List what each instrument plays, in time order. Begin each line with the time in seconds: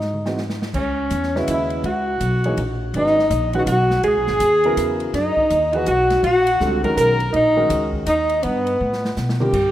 Already playing: upright bass G#2, tenor saxophone D#4
0.01 snare
0.14 mid tom
0.25 grand piano E3 G#3 C4 D#4 F#4, snare
0.38 snare
0.50 snare
0.62 snare
0.74 upright bass C#2, alto saxophone C#4, kick, crash
0.78 tenor saxophone C#4
1.10 upright bass E2, hi-hat pedal, ride
1.23 snare
1.36 grand piano C#3 G#3 C#4 F#4 B4, alto saxophone E4, tenor saxophone E4, snare
1.48 upright bass D#2, alto saxophone E4, hi-hat pedal, ride
1.54 tenor saxophone E4
1.70 ride
1.83 upright bass C#2, alto saxophone F#4, ride
1.89 tenor saxophone F#4
2.20 upright bass B1, hi-hat pedal, ride
2.44 grand piano E3 A#3 D#4 G#4 C#5, ride
2.57 upright bass A#1, ride
2.94 upright bass G#1, grand piano D#3 G#3 C#4 F#4 B4, alto saxophone D#4, ride
2.98 tenor saxophone D#4
3.07 snare
3.19 snare
3.30 upright bass A#1, hi-hat pedal, ride
3.53 grand piano D#3 G#3 C#4 F#4 B4, alto saxophone F#4, ride
3.59 tenor saxophone F#4
3.66 upright bass B1, alto saxophone F#4, hi-hat pedal, ride
3.72 tenor saxophone F#4
3.91 snare
4.03 upright bass C#2, alto saxophone G#4, ride
4.08 tenor saxophone G#4
4.16 upright bass B1
4.27 upright bass G#1, snare
4.40 upright bass D#2, hi-hat pedal, ride
4.64 grand piano C#3 F#3 B3 E4 A#4, ride
4.77 upright bass E2, hi-hat pedal, ride
5.00 ride
5.13 upright bass F#2, alto saxophone D#4, tenor saxophone D#4, snare, ride
5.36 muted upright bass stroke, kick
5.50 upright bass D#2, hi-hat pedal, ride
5.73 grand piano E3 A#3 D#4 G#4 B4, alto saxophone F#4, ride
5.78 tenor saxophone F#4
5.86 upright bass B1, alto saxophone F#4, hi-hat pedal, ride
5.91 tenor saxophone F#4
6.10 snare, ride
6.23 upright bass A#1, alto saxophone F#4, tenor saxophone F#4, ride
6.47 ride
6.61 upright bass C#2, grand piano D3 G3 C4 F4 A4, snare, hi-hat pedal
6.84 grand piano D#3 G#3 C#4 F#4 A#4, alto saxophone A#4, tenor saxophone A#4, kick, ride
6.97 upright bass B1, alto saxophone A#4, tenor saxophone A#4, hi-hat pedal, ride
7.20 ride
7.32 upright bass A#1, alto saxophone D#4, ride
7.36 tenor saxophone D#4
7.56 grand piano D#3 G#3 C#4 F#4 A#4
7.70 upright bass C#2, hi-hat pedal, ride
7.93 kick
8.06 upright bass D#2, alto saxophone D#4, tenor saxophone D#4, hi-hat pedal, ride
8.29 ride
8.43 upright bass G2, alto saxophone B3, tenor saxophone B3, ride
8.67 ride
8.80 upright bass A2
8.93 snare
9.05 snare
9.17 upright bass B2, snare, hi-hat pedal
9.29 snare
9.40 grand piano D3 G3 C4 F4 A#4, alto saxophone G4, tenor saxophone G4, mid tom
9.53 upright bass G2, kick, crash